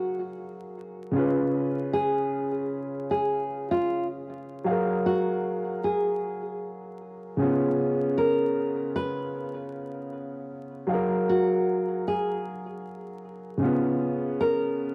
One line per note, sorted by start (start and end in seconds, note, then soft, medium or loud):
0.00 1.11 F#3 medium
0.00 0.17 F#4 medium
0.00 1.13 G#4 medium
0.00 1.14 A#4 medium
0.00 1.12 F5 medium
1.11 4.21 C#3 medium
1.11 4.22 C#4 medium
1.15 4.23 F4 medium
1.15 4.24 B4 medium
1.93 2.50 G#4 medium
3.11 3.68 G#4 medium
3.71 4.06 F4 medium
4.64 7.34 F#3 medium
4.64 7.35 F5 medium
4.69 7.36 G#4 medium
4.69 7.37 A#4 medium
5.06 5.80 F#4 medium
5.84 6.41 G#4 medium
7.37 10.46 C#3 medium
7.37 10.47 C#4 medium
7.41 10.49 B3 medium
7.41 10.48 F4 medium
8.18 8.91 A#4 medium
8.96 9.52 B4 medium
10.87 13.57 F#3 medium
10.87 13.58 F5 medium
10.91 13.59 G#4 medium
10.91 13.60 A#4 medium
11.30 12.03 F#4 medium
12.08 12.64 G#4 medium
13.57 14.95 C#3 medium
13.57 14.95 C#4 medium
13.62 14.95 B3 medium
13.62 14.95 F4 medium
14.41 14.95 A#4 medium